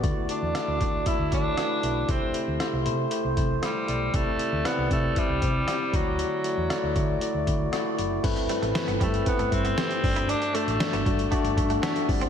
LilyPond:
<<
  \new Staff \with { instrumentName = "Tine electric piano" } { \time 4/4 \key d \mixolydian \tempo 4 = 117 <a e' fis' d''>8 <a e' fis' d''>8 <a e' fis' d''>8 <a e' fis' d''>8 <a e' fis' d''>8 <a e' fis' d''>8 <a e' fis' b'>8 <a e' fis' b'>8 | <a e' g' c''>8 <a e' g' c''>8 <a e' g' c''>8 <a e' g' c''>8 <a e' g' c''>8 <a e' g' c''>8 <a e' g' c''>8 <a e' g' d''>8 | <c' e' g' d''>8 <c' e' g' d''>8 <c' e' g' d''>8 <c' e' g' d''>8 <c' e' g' e''>8 <c' e' g' c''>8 <c' e' g' d''>8 <a e' fis' d''>8~ | <a e' fis' d''>8 <a e' fis' d''>8 <a e' fis' d''>8 <a e' fis' d''>8 <a e' fis' d''>8 <a e' fis' d''>8 <a e' fis' d''>8 <a e' fis' d''>8 |
<a c' e' b'>8 <a c' e' b'>8 <a c' e' b'>8 <a c' e' b'>8 <a c' e' b'>8 <a c' e' b'>8 <a c' e' g'>8 <a d' fis' d''>8~ | <a d' fis' d''>8 <a d' fis' d''>8 <a d' fis' d''>8 <a d' fis' d''>8 <a d' fis' d''>8 <a d' fis' e''>8 <a d' fis' e''>8 <c' e' g' d''>8 | }
  \new Staff \with { instrumentName = "Tine electric piano" } { \clef bass \time 4/4 \key d \mixolydian d4. r2 r8 | c4. r2 r8 | c4. r2 d8~ | d4 r2. |
g,4. r2 g,8~ | g,4 r2 r8 g,8 | }
  \new Staff \with { instrumentName = "Tenor saxophone" } { \time 4/4 \key d \mixolydian r8 d'4. e'8 d'4. | c'4 r2 g4 | a4 b8 a8 g4. fis8~ | fis2. r4 |
r4. a8 b8 c'4. | d'8 a2 r4. | }
  \new Staff \with { instrumentName = "Clean electric guitar" } { \time 4/4 \key d \mixolydian r1 | r1 | r1 | r1 |
r8 g16 a16 r16 b16 g16 r8 a16 r16 b16 c'16 r8 e'16 | d'16 r16 a16 r8 b16 fis16 r16 a16 r8 a16 b16 r8 c'16 | }
  \new Staff \with { instrumentName = "Fingered electric bass" } { \clef bass \time 4/4 \key d \mixolydian d,16 r8 e,16 r16 d,16 d8 r16 d,16 d8 r8 b,,8 | c,16 r8 d,16 r16 c,16 c8 r16 c,16 c8 r8 b,,8 | c,16 r8 d,16 r16 c,16 c8 r16 c,16 c8 r8 d,8~ | d,16 r8 e,16 r16 d,16 d8 r16 d,16 d8 r8 fis,,8 |
g,,16 r8 a,,16 r16 g,,16 g,8 r16 g,,16 g,8 r8 g,,8~ | g,,16 r8 a,,16 r16 g,,16 g,8 r16 g,,16 g,8 r8 g,,8 | }
  \new DrumStaff \with { instrumentName = "Drums" } \drummode { \time 4/4 <hh bd>8 hh8 <hh ss>8 <hh bd>8 <hh bd>8 <hh bd>8 <hh ss>8 hh8 | <hh bd>8 hh8 <hh ss>8 hh8 hh8 <hh bd>8 <hh ss>8 hh8 | <hh bd>8 hh8 <hh ss>8 <hh bd>8 <hh bd>8 <hh bd>8 <hh ss>8 <hh bd>8 | hh8 hh8 <hh ss>8 <hh bd>8 hh8 <hh bd>8 <hh ss>8 hh8 |
<cymc hh bd>16 hh16 hh16 hh16 <hh sn>16 hh16 <hh bd>16 hh16 <hh bd>16 hh16 <hh bd>16 hh16 <hh sn>16 hh16 <hho bd>16 hh16 | hh16 hh16 hh16 hh16 <hh sn>16 hh16 <hh bd>16 hh16 <hh bd>16 hh16 <hh bd>16 hh16 <hh sn>16 hh16 <hho bd>16 hh16 | }
>>